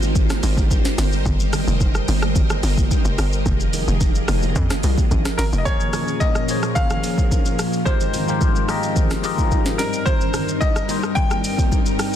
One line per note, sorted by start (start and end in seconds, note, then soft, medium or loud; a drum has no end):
0.00 0.41 G#1 loud
0.00 0.96 G#3 medium
0.00 0.96 D#4 medium
0.00 0.94 F4 medium
0.00 5.62 G4 medium
0.00 5.62 A#4 medium
0.00 3.42 C5 medium
0.00 low bongo medium
0.00 shaker soft
0.15 kick loud
0.15 low conga medium
0.15 shaker medium
0.30 cross-stick loud
0.30 snare medium
0.30 low bongo medium
0.30 shaker medium
0.43 0.96 G#1 loud
0.43 open hi-hat medium
0.43 shaker loud
0.57 kick medium
0.57 low bongo medium
0.57 shaker medium
0.71 kick medium
0.71 high bongo medium
0.71 shaker medium
0.85 snare medium
0.85 shaker medium
0.98 1.25 G1 loud
0.98 3.44 G3 medium
0.98 3.44 D#5 medium
0.98 snare medium
0.98 open hi-hat medium
0.98 shaker loud
1.12 shaker medium
1.26 1.66 G1 loud
1.26 kick loud
1.26 low conga medium
1.26 shaker medium
1.40 shaker medium
1.53 cross-stick medium
1.53 open hi-hat medium
1.53 high bongo medium
1.53 low conga medium
1.53 shaker loud
1.67 2.07 F1 medium
1.67 shaker medium
1.81 kick loud
1.81 high bongo medium
1.81 shaker medium
1.95 cross-stick medium
1.95 shaker medium
2.08 2.49 G1 loud
2.08 open hi-hat medium
2.08 high bongo medium
2.08 low bongo medium
2.08 shaker loud
2.22 cross-stick medium
2.22 low bongo medium
2.22 shaker soft
2.35 kick loud
2.35 low conga medium
2.35 shaker medium
2.50 cross-stick loud
2.50 low bongo medium
2.50 shaker medium
2.63 2.90 G1 loud
2.63 open hi-hat medium
2.63 shaker loud
2.78 kick medium
2.78 low bongo medium
2.78 shaker medium
2.91 kick medium
2.91 high bongo medium
2.91 shaker medium
3.05 3.18 F1 medium
3.05 shaker medium
3.18 3.45 G1 loud
3.18 cross-stick loud
3.18 open hi-hat medium
3.18 shaker loud
3.33 shaker medium
3.46 3.86 F1 loud
3.46 5.64 F3 medium
3.46 5.64 F4 medium
3.46 5.64 G#4 medium
3.46 5.64 D#5 medium
3.46 kick loud
3.46 low conga medium
3.46 shaker medium
3.60 shaker medium
3.73 open hi-hat medium
3.73 high bongo medium
3.73 low conga medium
3.73 shaker loud
3.88 4.27 F1 medium
3.88 shaker medium
4.01 kick loud
4.01 high bongo medium
4.01 shaker medium
4.15 shaker medium
4.28 4.55 F1 loud
4.28 cross-stick loud
4.28 open hi-hat medium
4.28 high bongo medium
4.28 low bongo medium
4.28 shaker loud
4.42 low bongo medium
4.42 shaker medium
4.56 4.70 F2 loud
4.56 kick loud
4.56 low conga medium
4.56 shaker medium
4.70 cross-stick medium
4.70 snare medium
4.70 low bongo medium
4.70 shaker medium
4.83 4.97 C2 loud
4.83 open hi-hat medium
4.83 shaker loud
4.98 kick medium
4.98 low bongo medium
4.98 shaker medium
5.11 5.25 G#1 loud
5.11 kick medium
5.11 high bongo medium
5.11 shaker medium
5.25 cross-stick loud
5.25 snare medium
5.25 shaker medium
5.38 5.52 G#1 loud
5.38 5.43 A#4 medium
5.38 snare medium
5.38 open hi-hat medium
5.38 shaker loud
5.53 5.66 F1 loud
5.53 shaker medium
5.58 5.66 D#5 medium
5.65 7.84 A#2 medium
5.65 9.75 F3 medium
5.65 6.32 A#3 medium
5.65 7.84 C#4 medium
5.65 7.84 G#4 medium
5.65 6.33 G#4 medium
5.65 7.84 A#4 medium
5.65 6.33 A#4 medium
5.65 6.22 C#5 loud
5.65 6.34 C#5 loud
5.65 kick loud
5.65 low conga medium
5.65 shaker medium
5.80 shaker medium
5.93 cross-stick medium
5.93 open hi-hat medium
5.93 low conga medium
5.93 shaker loud
6.08 shaker medium
6.20 6.77 D#5 loud
6.20 kick loud
6.20 high bongo medium
6.20 shaker medium
6.35 cross-stick medium
6.35 shaker medium
6.48 7.37 A#3 medium
6.48 7.37 G#4 medium
6.48 7.38 C5 medium
6.48 7.38 C#5 medium
6.48 open hi-hat medium
6.48 low bongo medium
6.48 shaker medium
6.63 cross-stick medium
6.63 shaker soft
6.75 7.89 F5 loud
6.75 kick loud
6.75 low conga medium
6.75 shaker medium
6.90 cross-stick medium
6.90 low bongo medium
6.90 shaker soft
7.04 open hi-hat medium
7.04 shaker loud
7.18 kick medium
7.18 low bongo medium
7.18 shaker medium
7.31 kick medium
7.31 high bongo medium
7.31 shaker medium
7.46 shaker medium
7.59 cross-stick medium
7.59 open hi-hat medium
7.59 shaker loud
7.73 shaker medium
7.85 9.77 G#2 medium
7.85 9.77 D#3 medium
7.85 8.19 G#3 medium
7.85 12.16 C4 medium
7.85 8.19 D#4 medium
7.85 8.20 F4 medium
7.85 9.77 G4 medium
7.85 8.20 G4 medium
7.85 12.16 A#4 medium
7.85 8.20 A#4 medium
7.85 9.47 C5 medium
7.85 8.20 C5 loud
7.85 kick loud
7.85 low conga medium
7.85 shaker medium
8.01 shaker medium
8.14 open hi-hat medium
8.14 low conga medium
8.14 shaker medium
8.27 8.60 G#3 medium
8.27 8.61 D#4 medium
8.27 8.61 F4 medium
8.27 8.61 G4 medium
8.27 8.62 A#4 medium
8.27 8.62 C5 medium
8.27 shaker medium
8.41 kick loud
8.41 high bongo medium
8.41 shaker medium
8.56 shaker medium
8.68 9.13 G#3 medium
8.68 9.13 D#4 medium
8.68 9.13 F4 medium
8.68 9.14 G4 medium
8.68 9.14 A#4 medium
8.68 9.14 D#5 loud
8.68 cross-stick medium
8.68 open hi-hat medium
8.68 low bongo medium
8.68 shaker loud
8.83 shaker soft
8.96 kick loud
8.96 low conga medium
8.96 shaker medium
9.10 cross-stick medium
9.10 snare medium
9.10 low bongo medium
9.10 shaker medium
9.23 9.79 G#3 medium
9.23 9.79 D#4 medium
9.23 9.79 F4 medium
9.23 9.79 G4 medium
9.23 9.80 A#4 medium
9.23 9.80 D#5 loud
9.23 open hi-hat medium
9.23 shaker loud
9.38 kick medium
9.38 low bongo medium
9.38 shaker medium
9.51 kick medium
9.51 high bongo medium
9.51 shaker medium
9.66 snare medium
9.66 shaker medium
9.78 12.16 G2 medium
9.78 10.67 G3 medium
9.78 12.16 G3 medium
9.78 10.67 C4 medium
9.78 12.16 D#4 medium
9.78 10.68 D#4 medium
9.78 10.07 A#4 medium
9.78 10.68 A#4 medium
9.78 snare medium
9.78 open hi-hat medium
9.78 shaker medium
9.93 shaker medium
10.06 10.63 C5 loud
10.06 kick loud
10.06 low conga medium
10.06 shaker medium
10.21 shaker medium
10.34 cross-stick medium
10.34 open hi-hat medium
10.34 low conga medium
10.34 shaker medium
10.48 shaker medium
10.61 11.12 D#5 loud
10.61 kick loud
10.61 high bongo medium
10.61 shaker medium
10.76 cross-stick medium
10.76 shaker medium
10.88 11.77 G3 medium
10.88 11.77 C4 medium
10.88 11.78 D#4 medium
10.88 11.78 C5 medium
10.88 open hi-hat medium
10.88 low bongo medium
10.88 shaker loud
11.03 cross-stick medium
11.03 shaker soft
11.15 12.16 G5 loud
11.15 kick loud
11.15 low conga medium
11.15 shaker medium
11.31 cross-stick loud
11.31 low bongo medium
11.31 shaker medium
11.44 open hi-hat medium
11.44 shaker loud
11.58 kick medium
11.58 low bongo medium
11.58 shaker medium
11.72 kick medium
11.72 high bongo medium
11.72 shaker medium
11.86 shaker medium
11.99 cross-stick medium
11.99 open hi-hat medium
11.99 shaker loud